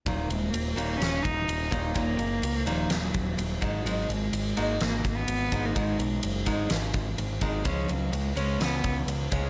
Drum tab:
RD |xxxxxxxx|xxxxxxxx|xxxxxxxx|xxxxxxxx|
SD |----o---|----o---|----o---|----o---|
BD |o----o-o|o----o-o|-----o-o|o--o-o-o|

RD |xxxxxxxx|
SD |----o---|
BD |o----o-o|